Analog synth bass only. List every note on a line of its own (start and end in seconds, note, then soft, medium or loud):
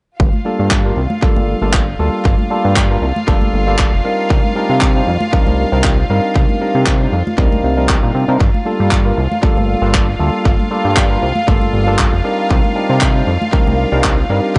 0.20 0.30 G1 loud
0.59 0.92 G2 medium
0.97 1.07 C2 medium
1.22 1.34 G1 soft
1.36 1.55 G1 medium
1.62 1.95 G1 medium
1.99 2.10 D2 medium
2.25 2.36 G1 medium
2.65 2.97 G2 medium
3.02 3.12 C2 medium
3.28 3.38 G1 medium
3.41 3.51 G1 soft
3.53 3.87 G1 medium
3.93 4.02 F1 medium
4.30 4.41 C2 loud
4.70 5.02 C3 medium
5.07 5.18 F2 medium
5.33 5.44 C2 soft
5.47 5.66 C2 medium
5.72 6.05 C2 medium
6.10 6.20 G2 medium
6.36 6.46 C2 loud
6.75 7.08 C3 medium
7.13 7.23 F2 medium
7.38 7.48 C2 medium
7.52 7.61 C2 soft
7.64 7.98 C2 medium
8.03 8.12 A#2 medium
8.15 8.25 C3 medium
8.29 8.38 C3 medium
8.41 8.51 G1 loud
8.80 9.13 G2 medium
9.17 9.28 C2 medium
9.43 9.54 G1 soft
9.56 9.76 G1 medium
9.82 10.15 G1 medium
10.20 10.30 D2 medium
10.45 10.56 G1 loud
10.85 11.18 G2 medium
11.22 11.33 C2 medium
11.48 11.58 G1 medium
11.62 11.71 G1 soft
11.73 12.08 G1 medium
12.13 12.22 F1 medium
12.51 12.61 C2 loud
12.90 13.23 C3 medium
13.27 13.38 F2 medium
13.53 13.64 C2 soft
13.67 13.86 C2 medium
13.92 14.25 C2 medium
14.30 14.40 G2 medium
14.56 14.59 C2 loud